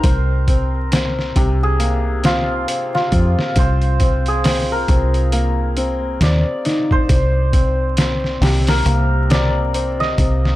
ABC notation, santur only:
X:1
M:4/4
L:1/16
Q:"Swing 16ths" 1/4=68
K:Cm
V:1 name="Santur"
B2 z4 z A3 F3 F3 | c3 A2 B4 z3 d3 c- | c2 z4 z B3 d3 e3 |]